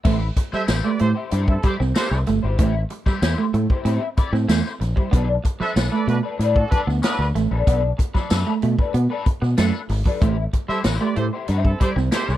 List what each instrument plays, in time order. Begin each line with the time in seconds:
0.04 fingered electric bass A1, clean electric guitar A3 E4 G4 C5, kick, crash
0.21 muted clean electric guitar stroke
0.36 muted clean electric guitar stroke, kick, closed hi-hat
0.52 clean electric guitar G3 E4 G4 C5, horn section A4 C5 E5, muted fingered electric bass stroke, snare
0.67 fingered electric bass A1, clean electric guitar E4 G4 C5, muted clean electric guitar stroke, snare, closed hi-hat, tambourine
0.84 clean electric guitar A3, horn section G4 B4 D5
0.99 fingered electric bass A2, clean electric guitar A3, horn section G4 A4 C5, muted clean electric guitar stroke, closed hi-hat
1.15 clean electric guitar E4 G4 C5
1.31 fingered electric bass G2, clean electric guitar E4 G4 C5, muted clean electric guitar stroke, closed hi-hat
1.47 horn section C4 E4 A4, muted clean electric guitar stroke, kick
1.63 clean electric guitar G3 E4 G4 D5, horn section G4 A4 C5, kick, closed hi-hat
1.78 fingered electric bass C2, clean electric guitar C4, muted clean electric guitar stroke, snare
1.95 clean electric guitar E4 G4 C5, horn section G4 A4 C5, snare, closed hi-hat, tambourine
2.11 fingered electric bass C2, snare
2.27 fingered electric bass G1, clean electric guitar A3, muted clean electric guitar stroke, snare, closed hi-hat
2.43 fingered electric bass G#1, clean electric guitar E4 G4 C5
2.59 fingered electric bass A1, clean electric guitar A3 E4 G4 C5, kick, closed hi-hat
2.75 muted clean electric guitar stroke
2.90 muted clean electric guitar stroke, closed hi-hat
3.06 clean electric guitar G3 E4 G4 C5, muted fingered electric bass stroke, kick, snare
3.22 fingered electric bass E2, clean electric guitar E4 G4 C5, muted clean electric guitar stroke, snare, closed hi-hat, tambourine
3.38 clean electric guitar A3
3.54 fingered electric bass A2, clean electric guitar A3, muted clean electric guitar stroke, closed hi-hat
3.70 clean electric guitar E4 G4 C5, kick
3.85 fingered electric bass A2, clean electric guitar C4 E4 G4 C5, closed hi-hat
4.01 muted clean electric guitar stroke
4.17 clean electric guitar E4 G4 D5, muted fingered electric bass stroke, kick, closed hi-hat
4.33 fingered electric bass A2, clean electric guitar C4, muted clean electric guitar stroke, snare
4.48 fingered electric bass E2, clean electric guitar A3 E4 G4 C5, snare, closed hi-hat, tambourine
4.66 snare
4.81 fingered electric bass A#1, muted clean electric guitar stroke, snare, closed hi-hat
4.96 clean electric guitar G3 E4 G4 C5, kick
5.11 fingered electric bass B1, clean electric guitar B3 D4 A4 B4, kick, closed hi-hat
5.29 muted clean electric guitar stroke
5.45 muted clean electric guitar stroke, kick, closed hi-hat
5.60 clean electric guitar F#3 D4 A4 B4, horn section A4 C5 E5, muted fingered electric bass stroke, snare
5.76 fingered electric bass B1, clean electric guitar D4 A4 B4, muted clean electric guitar stroke, snare, closed hi-hat, tambourine
5.92 clean electric guitar A3, horn section A4 B4 D5
6.07 fingered electric bass B2, clean electric guitar A3, horn section D4 F#4 B4, muted clean electric guitar stroke, closed hi-hat
6.23 clean electric guitar D4 A4 B4
6.39 fingered electric bass A2, clean electric guitar D4 A4 B4, muted clean electric guitar stroke, closed hi-hat
6.56 horn section D4 F#4 A4, muted clean electric guitar stroke, kick
6.71 clean electric guitar F#3 D4 A4 D5, horn section D4 F#4 B4, kick, closed hi-hat
6.87 fingered electric bass D2, clean electric guitar B3, muted clean electric guitar stroke, snare
7.02 clean electric guitar D4 A4 B4, horn section D4 F#4 B4, snare, closed hi-hat, tambourine
7.19 fingered electric bass D2, snare
7.35 fingered electric bass A1, clean electric guitar A3, muted clean electric guitar stroke, snare, closed hi-hat
7.51 fingered electric bass A#1, clean electric guitar D4 A4 B4
7.67 fingered electric bass B1, clean electric guitar B3 D4 A4 B4, kick, closed hi-hat
7.82 muted clean electric guitar stroke
7.98 muted clean electric guitar stroke, kick, closed hi-hat
8.14 clean electric guitar F#3 D4 A4 B4, muted fingered electric bass stroke, kick, snare
8.30 fingered electric bass F#2, clean electric guitar D4 A4 B4, muted clean electric guitar stroke, snare, closed hi-hat, tambourine
8.47 clean electric guitar A3
8.62 fingered electric bass B2, clean electric guitar A3, muted clean electric guitar stroke, closed hi-hat
8.79 clean electric guitar D4 A4 B4, kick
8.94 fingered electric bass B2, clean electric guitar B3, closed hi-hat
9.10 clean electric guitar D4 A4 B4, muted clean electric guitar stroke
9.26 muted fingered electric bass stroke, muted clean electric guitar stroke, kick, closed hi-hat
9.41 fingered electric bass B2, clean electric guitar B3, muted clean electric guitar stroke, snare
9.57 fingered electric bass F#2, clean electric guitar A3 D4 A4 B4, snare, closed hi-hat, tambourine
9.89 fingered electric bass G#1, muted clean electric guitar stroke, snare, open hi-hat
10.05 clean electric guitar F#3 D4 A4 B4, kick
10.21 fingered electric bass A1, clean electric guitar A3 E4 G4 C5, kick, closed hi-hat
10.37 muted clean electric guitar stroke
10.53 muted clean electric guitar stroke, kick, closed hi-hat
10.68 clean electric guitar G3 E4 G4 C5, horn section A4 C5 E5, muted fingered electric bass stroke, snare
10.84 fingered electric bass A1, clean electric guitar E4 G4 C5, muted clean electric guitar stroke, snare, closed hi-hat, tambourine
11.01 clean electric guitar A3, horn section G4 B4 D5
11.16 fingered electric bass A2, clean electric guitar A3, horn section G4 A4 C5, muted clean electric guitar stroke, closed hi-hat
11.33 clean electric guitar E4 G4 C5
11.48 fingered electric bass G2, clean electric guitar E4 G4 C5, muted clean electric guitar stroke, closed hi-hat
11.65 horn section C4 E4 A4, muted clean electric guitar stroke, kick
11.80 clean electric guitar G3 E4 G4 D5, horn section G4 A4 C5, kick, closed hi-hat
11.96 fingered electric bass C2, clean electric guitar C4, muted clean electric guitar stroke, snare
12.11 clean electric guitar E4 G4 C5, horn section G4 A4 C5, snare, closed hi-hat, tambourine
12.28 fingered electric bass C2, snare